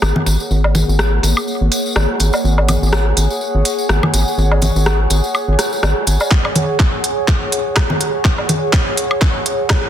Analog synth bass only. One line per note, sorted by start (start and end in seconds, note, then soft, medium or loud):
0.02 0.13 G#1 medium
0.26 0.37 G#1 medium
0.51 0.84 G#1 loud
0.88 1.20 G#1 medium
1.23 1.34 G#1 medium
1.61 1.69 G#1 medium
1.96 2.06 G#1 medium
2.20 2.31 G#1 medium
2.44 2.77 G#1 medium
2.82 3.13 G#1 medium
3.17 3.27 G#1 medium
3.55 3.63 G#1 medium
3.89 4.00 G#1 medium
4.14 4.24 G#1 medium
4.38 4.71 G#1 medium
4.76 5.07 G#1 medium
5.10 5.21 G#1 medium
5.48 5.56 G#1 medium
5.83 5.94 G#1 medium
6.07 6.18 G#1 medium